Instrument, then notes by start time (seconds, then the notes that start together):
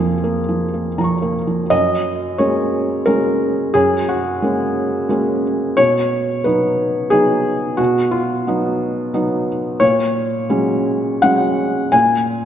felt piano
Already playing: F2 F3 A#3 G#4
0.24 A#3
0.49 F3
0.74 A#3
0.98 F3 A#5
1.04 C#6
1.22 A#3
1.47 F3
1.70 F#2 D#5
2.38 G#3 A#3 C#4 C#5
3.06 G#3 A#3 C#4 A#4
3.74 F#2 G#4
4.09 F#4
4.42 G#3 A#3 C#4
5.09 G#3 A#3 C#4
5.77 B2 C#5
6.44 F#3 B3 D#4 B4
7.10 F#3 B3 D#4 G#4
7.77 B2 F#4
8.11 F4
8.47 F#3 B3 D#4
9.14 F#3 B3 D#4
9.80 A#2 C#5
10.49 F#3 G#3 C#4
11.22 F#3 G#3 C#4 F#5
11.92 A#2 G#5